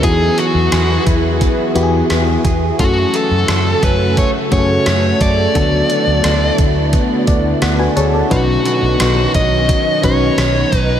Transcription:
Already playing: C#4 D#4
0.03 E2 E3 F#3 B3 E4 F#4 G#4 B4, kick, closed hi-hat
0.37 B3 F#4, closed hi-hat
0.54 E2
0.72 E2 G#4, cross-stick, closed hi-hat
1.07 E2 E4, kick, closed hi-hat
1.41 B3, kick, closed hi-hat
1.75 E2 B3 E4 F#4 G4, closed hi-hat
1.83 G#4
2.10 E2 B3, cross-stick, closed hi-hat
2.45 E2 G#4, kick, closed hi-hat
2.79 F#2 C#3 F#3 A3 C#4 F#4 A4, kick, closed hi-hat
3.14 A3 A4, closed hi-hat
3.31 F#2
3.48 F#2 A4, cross-stick, closed hi-hat
3.83 F#2 C#4 B4, kick, closed hi-hat
4.17 A3 C#5, kick, closed hi-hat
4.51 F#2 A3 C#4 F#4 G#4 C#5, kick, closed hi-hat
4.59 A4
4.86 F#2 A3, cross-stick, closed hi-hat
5.21 F#2 A4 D5, kick, closed hi-hat
5.55 D2 D3 F#3 A3 B3 D4 E4 F#4 A4, kick, closed hi-hat
5.90 B3, closed hi-hat
6.07 D2
6.24 D2 A4, cross-stick, closed hi-hat
6.58 D2 D4, kick, closed hi-hat
6.93 B3, kick, closed hi-hat
7.27 D2 D4 D5, kick, closed hi-hat
7.62 D2 B3 F#5, cross-stick, closed hi-hat
7.79 F#4 B4 G#5
7.96 D2 G#4 A4 C#5 A5, closed hi-hat
8.14 A4 D5
8.30 B1 B2 D#3 F#3 C#4 D#4 F#4 B4, kick, closed hi-hat
8.65 F#3 F#4, closed hi-hat
8.82 B1
9.00 B1 D#4, cross-stick, closed hi-hat
9.34 B1 C#4 D#5, kick, closed hi-hat
9.69 F#3, kick, closed hi-hat
10.03 B1 C#4 D#4 F#4 B4 C#5, kick, closed hi-hat
10.37 B1 F#3, cross-stick, closed hi-hat
10.72 B1 D#4, kick, closed hi-hat
10.79 B4

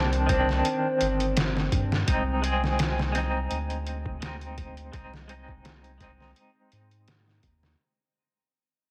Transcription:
Already playing: C2 D#3 C4 D4 C5
0.13 closed hi-hat
0.27 D#3 C4, kick, closed hi-hat
0.32 D4
0.49 snare
0.65 closed hi-hat
1.01 G1, closed hi-hat
1.20 closed hi-hat
1.37 snare, closed hi-hat
1.57 snare
1.72 G2, kick, closed hi-hat
1.92 snare
2.07 C2 G#3 C4 D#4, kick, closed hi-hat
2.42 G#3 C4 G#4, closed hi-hat
2.64 snare
2.79 snare, closed hi-hat
2.99 snare
3.12 G#3 C4, snare, closed hi-hat
3.18 D#4
3.51 D2, closed hi-hat
3.70 closed hi-hat
3.87 closed hi-hat
4.06 kick
4.21 G#3 C4 D#4, snare, closed hi-hat
4.41 closed hi-hat
4.58 kick, closed hi-hat
4.77 closed hi-hat
4.92 C2 G#3 C4 D#4, kick, closed hi-hat
5.14 snare
5.28 G#3 C4 D#4, closed hi-hat
5.48 kick
5.65 snare, closed hi-hat
5.84 closed hi-hat
5.98 G#3 C4, kick, closed hi-hat
6.04 D#4
6.20 snare
6.36 closed hi-hat
6.72 G#2, closed hi-hat
6.91 closed hi-hat
7.08 snare, closed hi-hat
7.28 snare
7.43 D#2, kick, closed hi-hat
7.63 snare

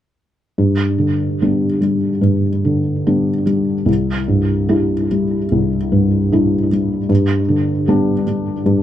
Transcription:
0.58 G2
0.98 D3
1.42 G3 B3 D4
1.81 G3
2.21 G2
2.65 D3
3.07 G3 B3 D4
3.46 G3
3.86 C2
4.28 G2
4.69 G3 D4 E4
5.11 G3
5.52 C2
5.92 G2
6.32 G3 D4 E4
6.72 G3
7.09 G2
7.49 D3
7.88 G3 B3 D4
8.27 G3
8.66 G2

